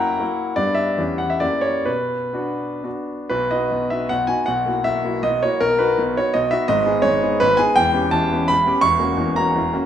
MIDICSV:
0, 0, Header, 1, 2, 480
1, 0, Start_track
1, 0, Key_signature, 2, "minor"
1, 0, Tempo, 383387
1, 719, Time_signature, 3, 2, 24, 8
1, 1225, Tempo, 449438
1, 2185, Tempo, 480384
1, 3625, Tempo, 414079
1, 3626, Key_signature, 5, "major"
1, 4105, Tempo, 382653
1, 6025, Tempo, 364964
1, 7465, Tempo, 356506
1, 12177, End_track
2, 0, Start_track
2, 0, Title_t, "Grand piano"
2, 0, Program_c, 0, 0
2, 0, Control_c, 0, 64, 127
2, 0, Note_on_c, 0, 42, 60
2, 0, Note_on_c, 0, 54, 54
2, 0, Note_on_c, 0, 58, 49
2, 0, Note_on_c, 0, 64, 56
2, 0, Note_on_c, 0, 78, 94
2, 0, Note_on_c, 0, 79, 93
2, 0, Note_on_c, 0, 82, 103
2, 203, Note_off_c, 0, 54, 0
2, 206, Note_off_c, 0, 58, 0
2, 208, Note_off_c, 0, 64, 0
2, 244, Note_on_c, 0, 54, 41
2, 245, Note_on_c, 0, 58, 44
2, 254, Note_on_c, 0, 64, 46
2, 283, Control_c, 0, 64, 0
2, 295, Note_off_c, 0, 42, 0
2, 295, Note_off_c, 0, 79, 0
2, 295, Note_off_c, 0, 82, 0
2, 662, Note_off_c, 0, 54, 0
2, 663, Note_off_c, 0, 58, 0
2, 668, Note_off_c, 0, 64, 0
2, 700, Note_on_c, 0, 74, 89
2, 704, Note_off_c, 0, 78, 0
2, 708, Note_on_c, 0, 43, 55
2, 710, Note_on_c, 0, 59, 43
2, 719, Note_on_c, 0, 62, 41
2, 727, Note_on_c, 0, 67, 42
2, 933, Note_on_c, 0, 76, 76
2, 934, Control_c, 0, 64, 127
2, 951, Note_off_c, 0, 74, 0
2, 1171, Note_off_c, 0, 59, 0
2, 1176, Note_off_c, 0, 62, 0
2, 1180, Note_off_c, 0, 67, 0
2, 1205, Note_off_c, 0, 43, 0
2, 1221, Note_on_c, 0, 61, 37
2, 1222, Note_on_c, 0, 59, 37
2, 1225, Note_on_c, 0, 40, 56
2, 1234, Note_on_c, 0, 67, 37
2, 1243, Control_c, 0, 64, 0
2, 1442, Note_on_c, 0, 78, 69
2, 1448, Note_off_c, 0, 76, 0
2, 1457, Control_c, 0, 64, 127
2, 1567, Note_on_c, 0, 76, 65
2, 1568, Note_off_c, 0, 78, 0
2, 1650, Note_off_c, 0, 61, 0
2, 1651, Note_off_c, 0, 59, 0
2, 1657, Note_off_c, 0, 67, 0
2, 1676, Note_on_c, 0, 74, 80
2, 1681, Note_off_c, 0, 40, 0
2, 1682, Note_on_c, 0, 58, 36
2, 1684, Note_on_c, 0, 42, 49
2, 1689, Note_on_c, 0, 64, 37
2, 1690, Note_off_c, 0, 76, 0
2, 1690, Note_on_c, 0, 67, 36
2, 1709, Control_c, 0, 64, 0
2, 1903, Note_on_c, 0, 73, 72
2, 1927, Note_off_c, 0, 74, 0
2, 1931, Control_c, 0, 64, 127
2, 2136, Note_off_c, 0, 58, 0
2, 2140, Note_off_c, 0, 64, 0
2, 2140, Note_off_c, 0, 67, 0
2, 2160, Note_on_c, 0, 71, 63
2, 2162, Note_on_c, 0, 47, 47
2, 2165, Note_off_c, 0, 42, 0
2, 2169, Note_off_c, 0, 73, 0
2, 2200, Control_c, 0, 64, 0
2, 2431, Control_c, 0, 64, 127
2, 2639, Note_on_c, 0, 59, 42
2, 2641, Note_off_c, 0, 47, 0
2, 2646, Note_on_c, 0, 62, 39
2, 2653, Note_on_c, 0, 66, 43
2, 3107, Note_off_c, 0, 59, 0
2, 3110, Note_off_c, 0, 62, 0
2, 3114, Note_off_c, 0, 66, 0
2, 3142, Note_on_c, 0, 59, 33
2, 3145, Note_on_c, 0, 62, 33
2, 3149, Note_off_c, 0, 71, 0
2, 3151, Note_on_c, 0, 66, 36
2, 3176, Control_c, 0, 64, 0
2, 3577, Note_off_c, 0, 59, 0
2, 3578, Note_off_c, 0, 62, 0
2, 3581, Note_off_c, 0, 66, 0
2, 3602, Note_on_c, 0, 71, 76
2, 3608, Note_on_c, 0, 47, 51
2, 3613, Note_on_c, 0, 35, 48
2, 3843, Note_on_c, 0, 75, 74
2, 3847, Note_off_c, 0, 47, 0
2, 3850, Note_off_c, 0, 35, 0
2, 3851, Note_off_c, 0, 71, 0
2, 3856, Note_on_c, 0, 63, 38
2, 3859, Note_on_c, 0, 59, 40
2, 3864, Note_on_c, 0, 66, 40
2, 3874, Control_c, 0, 64, 127
2, 4077, Note_off_c, 0, 63, 0
2, 4079, Note_off_c, 0, 59, 0
2, 4081, Note_off_c, 0, 66, 0
2, 4085, Note_on_c, 0, 35, 45
2, 4085, Note_on_c, 0, 47, 44
2, 4319, Note_on_c, 0, 76, 70
2, 4335, Note_on_c, 0, 63, 37
2, 4336, Note_off_c, 0, 35, 0
2, 4336, Note_off_c, 0, 47, 0
2, 4337, Note_on_c, 0, 59, 35
2, 4344, Note_off_c, 0, 75, 0
2, 4349, Note_on_c, 0, 66, 39
2, 4555, Note_off_c, 0, 63, 0
2, 4557, Note_off_c, 0, 59, 0
2, 4557, Note_on_c, 0, 78, 88
2, 4563, Note_off_c, 0, 66, 0
2, 4567, Note_on_c, 0, 47, 46
2, 4571, Note_on_c, 0, 35, 46
2, 4572, Note_off_c, 0, 76, 0
2, 4607, Control_c, 0, 64, 0
2, 4782, Note_on_c, 0, 80, 78
2, 4783, Note_on_c, 0, 59, 38
2, 4788, Note_on_c, 0, 63, 37
2, 4799, Note_on_c, 0, 66, 40
2, 4802, Note_off_c, 0, 47, 0
2, 4804, Note_off_c, 0, 35, 0
2, 4804, Note_off_c, 0, 78, 0
2, 5009, Note_off_c, 0, 59, 0
2, 5012, Note_off_c, 0, 63, 0
2, 5015, Note_on_c, 0, 78, 83
2, 5018, Note_off_c, 0, 66, 0
2, 5034, Note_off_c, 0, 80, 0
2, 5036, Note_on_c, 0, 47, 54
2, 5040, Note_on_c, 0, 35, 52
2, 5265, Note_on_c, 0, 58, 37
2, 5276, Note_off_c, 0, 47, 0
2, 5278, Note_off_c, 0, 35, 0
2, 5282, Note_on_c, 0, 64, 37
2, 5284, Note_on_c, 0, 66, 39
2, 5296, Control_c, 0, 64, 127
2, 5498, Note_on_c, 0, 76, 83
2, 5501, Note_off_c, 0, 58, 0
2, 5507, Note_on_c, 0, 47, 48
2, 5511, Note_off_c, 0, 64, 0
2, 5512, Note_off_c, 0, 66, 0
2, 5520, Note_on_c, 0, 35, 49
2, 5522, Note_off_c, 0, 78, 0
2, 5748, Note_on_c, 0, 58, 38
2, 5759, Note_on_c, 0, 64, 41
2, 5761, Note_on_c, 0, 66, 42
2, 5764, Note_off_c, 0, 47, 0
2, 5771, Note_off_c, 0, 35, 0
2, 5980, Note_off_c, 0, 58, 0
2, 5983, Note_on_c, 0, 75, 89
2, 5985, Note_on_c, 0, 35, 52
2, 5986, Note_off_c, 0, 64, 0
2, 5987, Note_off_c, 0, 66, 0
2, 5993, Note_on_c, 0, 47, 49
2, 6004, Note_off_c, 0, 76, 0
2, 6041, Control_c, 0, 64, 0
2, 6234, Note_off_c, 0, 35, 0
2, 6238, Note_off_c, 0, 47, 0
2, 6238, Note_on_c, 0, 73, 82
2, 6241, Note_off_c, 0, 75, 0
2, 6244, Note_on_c, 0, 58, 41
2, 6256, Note_on_c, 0, 64, 40
2, 6259, Note_on_c, 0, 66, 46
2, 6459, Note_off_c, 0, 58, 0
2, 6466, Note_off_c, 0, 64, 0
2, 6467, Note_off_c, 0, 66, 0
2, 6474, Note_on_c, 0, 70, 99
2, 6478, Note_on_c, 0, 47, 59
2, 6480, Note_off_c, 0, 73, 0
2, 6480, Note_on_c, 0, 35, 49
2, 6713, Note_off_c, 0, 47, 0
2, 6714, Note_off_c, 0, 35, 0
2, 6714, Note_on_c, 0, 59, 44
2, 6714, Note_on_c, 0, 71, 68
2, 6718, Control_c, 0, 64, 127
2, 6719, Note_off_c, 0, 70, 0
2, 6726, Note_on_c, 0, 63, 42
2, 6735, Note_on_c, 0, 66, 46
2, 6947, Note_off_c, 0, 59, 0
2, 6954, Note_off_c, 0, 63, 0
2, 6959, Note_off_c, 0, 66, 0
2, 6964, Note_on_c, 0, 47, 53
2, 6975, Note_on_c, 0, 35, 50
2, 7000, Control_c, 0, 64, 0
2, 7215, Note_off_c, 0, 47, 0
2, 7221, Note_off_c, 0, 35, 0
2, 7222, Note_on_c, 0, 73, 79
2, 7225, Note_off_c, 0, 71, 0
2, 7230, Note_on_c, 0, 63, 39
2, 7238, Note_on_c, 0, 59, 41
2, 7243, Note_on_c, 0, 66, 45
2, 7437, Note_on_c, 0, 75, 92
2, 7442, Note_off_c, 0, 63, 0
2, 7444, Note_on_c, 0, 47, 54
2, 7446, Note_off_c, 0, 59, 0
2, 7449, Note_off_c, 0, 66, 0
2, 7449, Note_on_c, 0, 35, 53
2, 7462, Note_off_c, 0, 73, 0
2, 7667, Note_on_c, 0, 76, 84
2, 7675, Note_on_c, 0, 59, 46
2, 7680, Note_off_c, 0, 47, 0
2, 7680, Note_on_c, 0, 63, 44
2, 7683, Note_off_c, 0, 35, 0
2, 7683, Note_off_c, 0, 75, 0
2, 7690, Note_on_c, 0, 66, 50
2, 7894, Note_off_c, 0, 59, 0
2, 7897, Note_off_c, 0, 63, 0
2, 7900, Note_on_c, 0, 75, 103
2, 7903, Note_off_c, 0, 66, 0
2, 7904, Note_on_c, 0, 32, 59
2, 7911, Note_on_c, 0, 44, 64
2, 7915, Note_off_c, 0, 76, 0
2, 8133, Note_on_c, 0, 59, 45
2, 8137, Note_on_c, 0, 63, 47
2, 8141, Control_c, 0, 64, 127
2, 8141, Note_on_c, 0, 68, 50
2, 8147, Note_off_c, 0, 32, 0
2, 8151, Note_off_c, 0, 44, 0
2, 8356, Note_on_c, 0, 73, 92
2, 8365, Note_on_c, 0, 32, 59
2, 8367, Note_on_c, 0, 44, 53
2, 8371, Note_off_c, 0, 59, 0
2, 8373, Note_off_c, 0, 63, 0
2, 8376, Note_off_c, 0, 68, 0
2, 8400, Note_off_c, 0, 75, 0
2, 8630, Note_off_c, 0, 32, 0
2, 8631, Note_off_c, 0, 44, 0
2, 8634, Note_on_c, 0, 59, 42
2, 8643, Note_on_c, 0, 63, 45
2, 8651, Note_on_c, 0, 68, 50
2, 8863, Note_off_c, 0, 59, 0
2, 8868, Note_off_c, 0, 63, 0
2, 8868, Note_on_c, 0, 71, 97
2, 8872, Note_off_c, 0, 68, 0
2, 8873, Note_off_c, 0, 73, 0
2, 8884, Note_on_c, 0, 44, 61
2, 8886, Note_on_c, 0, 32, 59
2, 8919, Control_c, 0, 64, 0
2, 9098, Note_on_c, 0, 80, 97
2, 9110, Note_on_c, 0, 59, 48
2, 9121, Note_on_c, 0, 63, 49
2, 9123, Note_off_c, 0, 71, 0
2, 9124, Note_off_c, 0, 44, 0
2, 9125, Note_off_c, 0, 32, 0
2, 9128, Note_on_c, 0, 68, 55
2, 9338, Note_off_c, 0, 59, 0
2, 9344, Note_off_c, 0, 63, 0
2, 9347, Note_on_c, 0, 79, 107
2, 9348, Note_off_c, 0, 68, 0
2, 9353, Note_on_c, 0, 28, 60
2, 9358, Note_off_c, 0, 80, 0
2, 9366, Note_on_c, 0, 40, 70
2, 9592, Note_on_c, 0, 59, 50
2, 9593, Note_on_c, 0, 61, 47
2, 9601, Note_on_c, 0, 67, 49
2, 9603, Note_off_c, 0, 28, 0
2, 9609, Note_off_c, 0, 40, 0
2, 9624, Control_c, 0, 64, 127
2, 9828, Note_on_c, 0, 81, 103
2, 9833, Note_off_c, 0, 59, 0
2, 9834, Note_off_c, 0, 61, 0
2, 9839, Note_off_c, 0, 67, 0
2, 9846, Note_on_c, 0, 28, 58
2, 9849, Note_on_c, 0, 40, 61
2, 9860, Note_off_c, 0, 79, 0
2, 10104, Note_off_c, 0, 28, 0
2, 10105, Note_off_c, 0, 40, 0
2, 10112, Note_on_c, 0, 59, 47
2, 10117, Note_on_c, 0, 61, 46
2, 10121, Note_on_c, 0, 67, 50
2, 10321, Note_on_c, 0, 83, 99
2, 10328, Note_on_c, 0, 40, 59
2, 10329, Note_on_c, 0, 28, 60
2, 10334, Note_off_c, 0, 59, 0
2, 10337, Note_off_c, 0, 61, 0
2, 10339, Note_off_c, 0, 67, 0
2, 10342, Note_off_c, 0, 81, 0
2, 10383, Control_c, 0, 64, 0
2, 10567, Note_off_c, 0, 28, 0
2, 10567, Note_off_c, 0, 40, 0
2, 10567, Note_on_c, 0, 59, 47
2, 10584, Note_on_c, 0, 61, 50
2, 10588, Note_on_c, 0, 67, 54
2, 10771, Note_on_c, 0, 85, 109
2, 10775, Note_off_c, 0, 59, 0
2, 10785, Note_off_c, 0, 61, 0
2, 10787, Note_off_c, 0, 67, 0
2, 10787, Note_on_c, 0, 40, 67
2, 10789, Note_off_c, 0, 83, 0
2, 10791, Note_on_c, 0, 28, 61
2, 11010, Note_on_c, 0, 58, 50
2, 11012, Note_on_c, 0, 66, 49
2, 11018, Note_off_c, 0, 40, 0
2, 11021, Note_off_c, 0, 28, 0
2, 11025, Note_on_c, 0, 61, 47
2, 11068, Control_c, 0, 64, 127
2, 11245, Note_off_c, 0, 58, 0
2, 11246, Note_off_c, 0, 66, 0
2, 11247, Note_on_c, 0, 28, 59
2, 11250, Note_on_c, 0, 40, 57
2, 11253, Note_off_c, 0, 61, 0
2, 11508, Note_on_c, 0, 82, 89
2, 11515, Note_off_c, 0, 28, 0
2, 11517, Note_off_c, 0, 40, 0
2, 11521, Note_on_c, 0, 58, 45
2, 11522, Note_off_c, 0, 85, 0
2, 11527, Note_on_c, 0, 61, 46
2, 11530, Note_on_c, 0, 66, 48
2, 11756, Note_off_c, 0, 58, 0
2, 11759, Note_off_c, 0, 61, 0
2, 11760, Note_off_c, 0, 66, 0
2, 11772, Note_on_c, 0, 40, 58
2, 11773, Note_on_c, 0, 28, 56
2, 11801, Control_c, 0, 64, 0
2, 12008, Note_on_c, 0, 58, 47
2, 12012, Note_on_c, 0, 61, 47
2, 12014, Note_off_c, 0, 40, 0
2, 12015, Note_off_c, 0, 28, 0
2, 12015, Note_off_c, 0, 82, 0
2, 12026, Note_on_c, 0, 66, 47
2, 12177, Note_off_c, 0, 58, 0
2, 12177, Note_off_c, 0, 61, 0
2, 12177, Note_off_c, 0, 66, 0
2, 12177, End_track
0, 0, End_of_file